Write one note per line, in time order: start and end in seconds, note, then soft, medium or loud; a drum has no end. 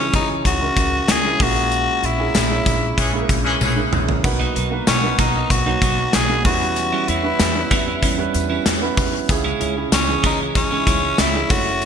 0.00 1.42 C#3 medium
0.00 0.44 E3 medium
0.00 0.12 C#4 loud
0.00 0.61 C#4 medium
0.00 0.61 E4 medium
0.00 1.25 G#4 loud
0.13 0.36 C#2 loud
0.13 0.29 D#4 medium
0.13 kick loud
0.13 closed hi-hat medium
0.13 tambourine soft
0.45 0.68 C#2 loud
0.45 1.12 F#4 loud
0.45 kick medium
0.45 closed hi-hat medium
0.45 tambourine soft
0.61 1.07 C#4 medium
0.61 1.07 E4 medium
0.61 1.07 A#4 medium
0.76 0.99 C#2 loud
0.76 kick medium
0.76 closed hi-hat medium
0.76 tambourine soft
1.08 1.31 C#2 loud
1.08 1.43 G#4 loud
1.08 snare loud
1.08 closed hi-hat medium
1.08 tambourine medium
1.24 1.39 C#4 medium
1.24 1.39 E4 medium
1.24 1.40 G#4 medium
1.40 1.86 A#1 loud
1.40 2.31 A#2 medium
1.40 2.03 G#3 medium
1.40 2.03 A#3 medium
1.40 2.03 C#4 medium
1.40 2.03 E4 medium
1.40 2.07 F#4 loud
1.40 2.04 A#4 medium
1.40 kick loud
1.40 open hi-hat medium
1.40 tambourine soft
1.72 closed hi-hat medium
1.72 tambourine medium
2.03 2.26 A#1 medium
2.03 3.31 E4 loud
2.03 closed hi-hat medium
2.18 2.42 G#3 medium
2.18 2.42 A#3 medium
2.18 2.42 C#4 medium
2.18 2.42 E4 medium
2.18 2.42 G#4 medium
2.34 2.57 A#1 loud
2.34 snare loud
2.34 closed hi-hat medium
2.34 tambourine medium
2.50 2.96 G#3 medium
2.50 2.96 A#3 medium
2.50 2.96 C#4 medium
2.50 2.97 E4 medium
2.50 2.97 C#5 medium
2.66 2.89 A#1 loud
2.66 kick loud
2.66 closed hi-hat medium
2.66 tambourine soft
2.97 3.20 A#1 loud
2.97 3.11 E3 medium
2.97 3.11 C#4 medium
2.97 3.11 G#4 medium
2.97 kick medium
2.97 closed hi-hat medium
3.13 3.59 G#3 medium
3.13 3.59 A#3 medium
3.13 3.60 C#4 medium
3.13 3.60 E4 medium
3.13 3.20 G#4 medium
3.21 3.63 A#4 loud
3.29 3.52 A#1 loud
3.29 kick medium
3.29 closed hi-hat medium
3.29 tambourine soft
3.45 3.55 E3 loud
3.45 3.55 C#4 loud
3.45 3.55 G#4 loud
3.61 3.84 A#1 loud
3.61 4.06 E3 medium
3.61 4.06 C#4 medium
3.61 4.06 G#4 medium
3.61 high tom medium
3.61 tambourine medium
3.76 4.11 G#3 medium
3.76 4.11 A#3 medium
3.76 4.11 C#4 medium
3.76 4.11 E4 medium
3.76 4.11 A#4 medium
3.92 4.15 A#1 medium
3.92 mid tom medium
3.92 tambourine soft
4.09 floor tom loud
4.24 4.47 B1 loud
4.24 5.15 B2 medium
4.24 4.58 B3 medium
4.24 4.59 D#4 medium
4.24 4.59 F#4 medium
4.24 4.58 A#4 medium
4.24 4.59 B4 medium
4.24 muted clean electric guitar stroke soft
4.24 kick loud
4.24 tambourine medium
4.24 splash medium
4.39 4.54 F#3 medium
4.39 4.55 A#3 medium
4.39 4.55 D#4 medium
4.55 4.78 B1 loud
4.55 4.68 F#3 medium
4.55 4.69 A#3 medium
4.55 4.69 D#4 medium
4.55 closed hi-hat medium
4.71 4.94 A#3 medium
4.71 4.94 B3 medium
4.71 4.94 D#4 medium
4.71 4.95 F#4 medium
4.71 4.95 B4 medium
4.71 muted clean electric guitar stroke medium
4.87 5.10 B1 loud
4.87 5.21 C#4 loud
4.87 muted clean electric guitar stroke soft
4.87 snare loud
4.87 closed hi-hat medium
4.87 tambourine medium
5.02 5.49 B3 medium
5.02 5.49 D#4 medium
5.02 5.49 F#4 medium
5.02 5.49 A#4 medium
5.02 5.49 B4 medium
5.02 muted clean electric guitar stroke soft
5.18 5.41 B1 loud
5.18 5.35 F#3 medium
5.18 5.34 A#3 medium
5.18 5.52 D#4 loud
5.18 5.34 D#4 medium
5.18 kick medium
5.18 closed hi-hat medium
5.18 tambourine soft
5.35 5.48 F#3 medium
5.35 5.48 A#3 medium
5.35 5.48 D#4 medium
5.50 5.73 B1 loud
5.50 6.15 F#4 loud
5.50 muted clean electric guitar stroke soft
5.50 kick medium
5.50 closed hi-hat medium
5.50 tambourine soft
5.66 5.80 F#3 soft
5.66 6.12 A#3 medium
5.66 5.79 A#3 medium
5.66 6.12 B3 medium
5.66 5.79 D#4 medium
5.66 6.12 D#4 medium
5.66 6.12 F#4 medium
5.66 6.12 C#5 medium
5.82 6.05 B1 loud
5.82 5.98 F#3 medium
5.82 5.98 A#3 medium
5.82 5.97 D#4 medium
5.82 kick medium
5.82 closed hi-hat medium
5.82 tambourine soft
5.98 muted clean electric guitar stroke medium
6.13 6.46 B1 loud
6.13 6.45 G#4 loud
6.13 muted clean electric guitar stroke soft
6.13 snare loud
6.13 closed hi-hat loud
6.13 tambourine medium
6.28 6.45 A#3 medium
6.28 6.43 B3 medium
6.28 6.45 D#4 medium
6.28 6.45 F#4 medium
6.28 6.45 G#4 medium
6.28 muted clean electric guitar stroke soft
6.44 6.91 E2 loud
6.44 7.36 E3 medium
6.44 7.08 G3 medium
6.44 7.08 B3 medium
6.44 7.08 C#4 medium
6.44 7.08 E4 medium
6.44 7.10 F#4 loud
6.44 7.08 B4 medium
6.44 kick loud
6.44 open hi-hat medium
6.44 tambourine medium
6.61 muted clean electric guitar stroke medium
6.76 muted clean electric guitar stroke soft
6.76 closed hi-hat medium
6.76 tambourine medium
6.92 7.07 G3 medium
6.92 7.08 C#4 medium
6.92 7.08 E4 medium
7.08 7.31 E2 loud
7.08 7.21 G3 medium
7.08 7.21 C#4 medium
7.08 8.35 E4 loud
7.08 7.22 E4 medium
7.08 closed hi-hat medium
7.23 7.47 G3 medium
7.23 7.47 B3 medium
7.23 7.47 C#4 medium
7.23 7.47 E4 medium
7.23 7.47 B4 medium
7.23 muted clean electric guitar stroke soft
7.39 7.62 E2 loud
7.39 muted clean electric guitar stroke soft
7.39 snare loud
7.39 closed hi-hat medium
7.39 tambourine medium
7.55 8.01 G3 medium
7.55 8.01 B3 medium
7.55 8.01 C#4 medium
7.55 8.02 E4 medium
7.55 8.02 B4 medium
7.55 muted clean electric guitar stroke soft
7.71 7.94 E2 loud
7.71 7.87 G3 medium
7.71 7.86 C#4 medium
7.71 7.85 E4 medium
7.71 kick medium
7.71 closed hi-hat medium
7.71 tambourine soft
7.87 8.00 G3 medium
7.87 8.00 C#4 medium
7.87 8.00 E4 medium
8.02 8.26 E2 loud
8.02 8.19 G3 medium
8.02 8.18 C#4 medium
8.02 8.17 E4 loud
8.02 kick medium
8.02 closed hi-hat medium
8.02 tambourine soft
8.18 8.64 G3 medium
8.18 8.64 B3 medium
8.18 8.65 C#4 medium
8.18 8.65 E4 medium
8.18 8.65 B4 loud
8.18 muted clean electric guitar stroke soft
8.34 8.57 E2 loud
8.34 muted clean electric guitar stroke soft
8.34 closed hi-hat medium
8.34 tambourine soft
8.50 8.64 G3 medium
8.50 8.63 C#4 medium
8.50 8.63 E4 medium
8.66 8.89 E2 loud
8.66 muted clean electric guitar stroke soft
8.66 snare loud
8.66 closed hi-hat loud
8.66 tambourine medium
8.81 9.16 G3 medium
8.81 9.16 B3 medium
8.81 9.16 C#4 medium
8.81 9.17 E4 medium
8.81 9.17 B4 medium
8.81 muted clean electric guitar stroke soft
8.97 9.20 E2 medium
8.97 kick medium
8.97 open hi-hat medium
8.97 tambourine medium
9.13 muted clean electric guitar stroke medium
9.29 9.52 C#2 loud
9.29 10.20 C#3 medium
9.29 9.64 C#4 medium
9.29 9.64 E4 medium
9.29 9.64 G#4 loud
9.29 muted clean electric guitar stroke soft
9.29 kick loud
9.29 closed hi-hat medium
9.29 tambourine medium
9.44 9.59 G#3 medium
9.44 9.60 C#4 medium
9.44 9.60 E4 medium
9.60 9.83 C#2 loud
9.60 9.73 G#3 medium
9.60 9.74 C#4 medium
9.60 9.74 E4 medium
9.60 closed hi-hat medium
9.76 9.99 C#4 medium
9.76 10.00 E4 medium
9.76 10.00 G#4 medium
9.76 muted clean electric guitar stroke medium
9.92 10.15 C#2 loud
9.92 10.22 C#4 loud
9.92 muted clean electric guitar stroke soft
9.92 snare loud
9.92 closed hi-hat medium
9.92 tambourine medium
10.08 10.54 E3 medium
10.08 10.54 C#4 medium
10.08 10.55 G#4 medium
10.08 muted clean electric guitar stroke soft
10.23 10.47 C#2 loud
10.23 10.39 G#3 medium
10.23 10.38 C#4 loud
10.23 10.40 D#4 loud
10.23 10.38 E4 loud
10.23 kick loud
10.23 closed hi-hat medium
10.23 tambourine soft
10.39 10.53 G#3 soft
10.39 10.53 C#4 medium
10.39 10.52 E4 medium
10.55 10.78 C#2 medium
10.55 11.21 C#4 loud
10.55 muted clean electric guitar stroke soft
10.55 kick medium
10.55 closed hi-hat medium
10.55 tambourine soft
10.71 10.85 G#3 medium
10.71 11.17 C#4 medium
10.71 10.84 C#4 medium
10.71 10.78 D#4 medium
10.71 10.84 E4 medium
10.71 11.18 G#4 medium
10.78 11.21 E4 medium
10.87 11.10 C#2 loud
10.87 11.03 G#3 medium
10.87 11.02 C#4 loud
10.87 11.01 E4 loud
10.87 kick loud
10.87 closed hi-hat medium
10.87 tambourine medium
11.02 muted clean electric guitar stroke soft
11.18 11.41 C#2 loud
11.18 11.53 E4 loud
11.18 muted clean electric guitar stroke soft
11.18 snare loud
11.18 closed hi-hat loud
11.18 tambourine medium
11.34 11.48 C#4 medium
11.34 11.49 E4 medium
11.34 11.51 G#4 medium
11.34 muted clean electric guitar stroke soft
11.50 11.85 F#1 loud
11.50 11.85 A3 medium
11.50 11.85 C#4 medium
11.50 11.85 E4 medium
11.50 11.85 F#4 medium
11.50 11.85 F#4 loud
11.50 11.85 C#5 medium
11.50 kick loud
11.50 open hi-hat medium
11.50 tambourine soft
11.66 muted clean electric guitar stroke medium
11.81 muted clean electric guitar stroke soft
11.81 closed hi-hat medium
11.81 tambourine medium